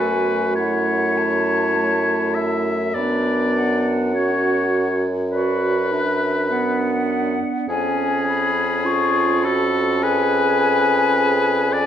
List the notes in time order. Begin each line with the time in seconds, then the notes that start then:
Already playing: F#2 A3 F#4 B4 G#5
0.55 E4 C#5 F#5
1.17 A5
1.77 A3
2.35 E5
2.94 F#2 B3 D4 D5 B5
3.55 F#5
4.14 C#4 F#4 C#5
5.32 F#4 B4 D5
5.89 D4 E5
6.50 B3 D4 F#5
7.68 F2 C#4 G#4 G#5
8.27 B5
8.85 F4 C#6
9.42 F#4 A4 B5
10.02 G#4 B4 G#5
11.16 G#4
11.73 D5